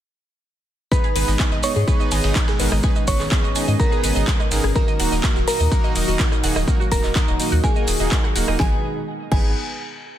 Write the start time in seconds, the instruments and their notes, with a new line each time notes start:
0.92 analog synth pad B2 D#3 G#3 D#4 G#4, supersaw synth B3 D#4 G#4 B4, synth bell B4 B5, kick, closed hi-hat, maracas
1.04 synth arpeggio sound G#4, closed hi-hat, maracas
1.16 sub bass G#1, supersaw synth B3 D#4 G#4 B4, synth arpeggio sound B4, closed hi-hat, open hi-hat, maracas
1.28 sub bass G#1, synth arpeggio sound D#5, snare, maracas
1.40 supersaw synth B3 D#4 G#4 B4, synth arpeggio sound G#5, kick, snare, clap, closed hi-hat, maracas
1.52 sub bass G#1, synth arpeggio sound D#5, snare, maracas
1.63 supersaw synth B3 D#4 G#4 D#5, synth bell C#5 C#6, closed hi-hat, open hi-hat, maracas
1.76 sub bass G#2, synth arpeggio sound G#4, maracas
1.88 supersaw synth B3 D#4 G#4 B4, synth arpeggio sound B4, kick, closed hi-hat, maracas
2.00 synth arpeggio sound D#5, maracas
2.11 sub bass G#1, supersaw synth B3 D#4 G#4 D#5, synth arpeggio sound G#5, snare, closed hi-hat, open hi-hat, maracas
2.24 sub bass G#1, synth arpeggio sound D#5, snare, closed hi-hat, maracas
2.35 supersaw synth B3 D#4 G#4 B4, kick, snare, clap, closed hi-hat, maracas
2.48 synth arpeggio sound G#4, cross-stick, snare, closed hi-hat, maracas
2.59 sub bass G#1, supersaw synth B3 D#4 G#4 A#4, synth arpeggio sound B4, closed hi-hat, open hi-hat, maracas
2.72 sub bass G#1, synth arpeggio sound D#5, cross-stick, snare, maracas
2.83 supersaw synth B3 D#4 G#4 B4, analog synth pad C#4, synth arpeggio sound G#5, kick, closed hi-hat, maracas
2.96 synth arpeggio sound D#5, maracas
3.07 sub bass G#1, supersaw synth B3 D#4 G#4 B4, synth bell C#5 C#6, kick, closed hi-hat, open hi-hat, maracas
3.20 sub bass G#1, synth arpeggio sound G#4, snare, clap, maracas
3.31 supersaw synth B3 D#4 G#4 B4, synth arpeggio sound B4, kick, snare, clap, closed hi-hat, maracas
3.44 sub bass G#1, synth arpeggio sound D#5, maracas
3.55 supersaw synth B3 D#4 G#4 D#5, synth arpeggio sound G#5, closed hi-hat, open hi-hat, maracas
3.68 sub bass G#2, synth arpeggio sound D#5, maracas
3.80 supersaw synth B3 D#4 G#4 B4, synth bell A#4 A#5, kick, closed hi-hat, maracas
3.92 synth arpeggio sound G#4, maracas
4.04 sub bass G#1, supersaw synth B3 D#4 G#4 D#5, synth arpeggio sound B4, closed hi-hat, open hi-hat, maracas
4.15 sub bass G#1, synth arpeggio sound D#5, maracas
4.27 synth arpeggio sound G#5, kick, snare, clap, closed hi-hat, maracas
4.40 synth arpeggio sound D#5, cross-stick, maracas
4.51 sub bass G#1, supersaw synth B3 D#4 G#4 A#4, snare, closed hi-hat, open hi-hat, maracas
4.64 sub bass G#1, synth arpeggio sound G#4, cross-stick, snare, maracas
4.75 analog synth pad A#2 F#3 D#4 F#4, supersaw synth A#3 D#4 F#4 A#4, synth arpeggio sound A#4, synth bell A#4 A#5, kick, closed hi-hat, maracas
4.88 synth arpeggio sound D#5, closed hi-hat, maracas
5.00 sub bass D#1, supersaw synth A#3 D#4 F#4 A#4, synth arpeggio sound F#5, closed hi-hat, open hi-hat, maracas
5.12 sub bass D#1, synth arpeggio sound D#5, snare, maracas
5.23 supersaw synth A#3 D#4 F#4 A#4, kick, snare, clap, closed hi-hat, maracas
5.36 sub bass D#1, synth arpeggio sound F#4, snare, maracas
5.48 supersaw synth A#3 D#4 F#4 D#5, synth bell A#4 A#5, synth arpeggio sound A#4, closed hi-hat, open hi-hat, maracas
5.60 sub bass D#2, synth arpeggio sound D#5, maracas
5.72 supersaw synth A#3 D#4 F#4 A#4, synth arpeggio sound F#5, kick, closed hi-hat, maracas
5.84 synth arpeggio sound D#5, maracas
5.95 sub bass D#1, supersaw synth A#3 D#4 F#4 D#5, closed hi-hat, open hi-hat, maracas
6.08 sub bass D#1, synth arpeggio sound F#4, maracas
6.19 supersaw synth A#3 A#4, synth arpeggio sound A#4, kick, snare, clap, closed hi-hat, maracas
6.32 synth arpeggio sound D#5, cross-stick, maracas
6.44 sub bass D#1, supersaw synth A#3 D#4 F#4 G#4, synth arpeggio sound F#5, closed hi-hat, open hi-hat, maracas
6.56 sub bass D#1, synth arpeggio sound D#5, cross-stick, snare, maracas
6.68 supersaw synth A#3 D#4 F#4 A#4, kick, closed hi-hat, maracas
6.80 synth arpeggio sound F#4, maracas
6.92 sub bass D#1, supersaw synth D#4 F#4 A#4, synth bell A#4 A#5, synth arpeggio sound A#4, kick, closed hi-hat, open hi-hat, maracas
7.04 sub bass D#1, synth arpeggio sound D#5, snare, clap, maracas
7.15 supersaw synth A#3 D#4 F#4 A#4, synth arpeggio sound F#5, kick, snare, clap, closed hi-hat, maracas
7.28 sub bass D#1, synth arpeggio sound D#5, maracas
7.40 supersaw synth A#3 D#4 F#4 D#5, closed hi-hat, open hi-hat, maracas
7.52 sub bass D#2, synth arpeggio sound F#4, maracas
7.64 supersaw synth A#3 D#4 F#4 A#4, synth bell G#4 G#5, synth arpeggio sound A#4, kick, closed hi-hat, maracas
7.76 synth arpeggio sound D#5, maracas
7.87 sub bass D#1, synth arpeggio sound D#6, closed hi-hat, open hi-hat, maracas
7.99 sub bass D#1, supersaw synth A#3 D#4 F#4 G#4, synth arpeggio sound D#5, maracas
8.11 supersaw synth A#3 D#4 F#4 A#4, kick, snare, clap, closed hi-hat, maracas
8.24 synth arpeggio sound F#5, cross-stick, maracas
8.36 sub bass D#1, supersaw synth A#3 D#4 F#4 A#4, synth arpeggio sound F#5, closed hi-hat, open hi-hat, maracas
8.48 sub bass D#1, supersaw synth A#3 D#4 F#4 G#4, synth arpeggio sound D#5, cross-stick, maracas
8.60 sub bass G#1, analog synth pad B2 D#3 G#3 D#4 G#4, supersaw synth G#4, synth arpeggio sound G#4, synth bell G#5, kick, snare
9.32 sub bass G#1, supersaw synth B3 D#4 G#4 B4, synth arpeggio sound G#4, synth bell G#5, kick, crash